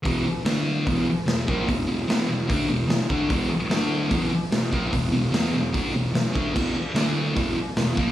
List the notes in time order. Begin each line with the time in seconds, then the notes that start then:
0.03 E2 B2 E3, kick, open hi-hat
0.25 muted distorted electric guitar stroke
0.45 D3 A3 D4, snare, open hi-hat
0.87 E2 B2 E3, kick, open hi-hat
1.08 muted distorted electric guitar stroke
1.26 E2 B2, snare, open hi-hat
1.47 A#2 F3 A#3, kick
1.68 E2 B2, kick, open hi-hat
1.87 E2 B2
2.07 E2 B2 E3, snare, open hi-hat
2.28 E2 B2
2.47 D3 A3 D4, kick, open hi-hat
2.68 E2 B2
2.88 E2 B2, snare, open hi-hat
3.09 D3 A3 D4, kick
3.29 E2 B2 E3, kick, open hi-hat
3.50 muted distorted electric guitar stroke
3.70 D3 A3 D4, snare, open hi-hat
4.09 E2 B2 E3, kick, open hi-hat
4.31 muted distorted electric guitar stroke
4.52 E2 B2, snare, open hi-hat
4.72 A#2 F3 A#3, kick
4.93 E2 B2, kick, open hi-hat
5.12 E2 B2
5.31 E2 B2 E3, snare, open hi-hat
5.52 E2 B2
5.73 D3 A3 D4, kick, open hi-hat
5.93 E2 B2
6.14 E2 B2, snare, open hi-hat
6.33 D3 A3 D4, kick
6.54 E2 B2 E3, kick, crash
6.76 muted distorted electric guitar stroke
6.94 D3 A3 D4, snare, open hi-hat
7.34 E2 B2 E3, kick, open hi-hat
7.56 muted distorted electric guitar stroke
7.76 E2 B2, snare, open hi-hat
7.95 A#2 F3 A#3, kick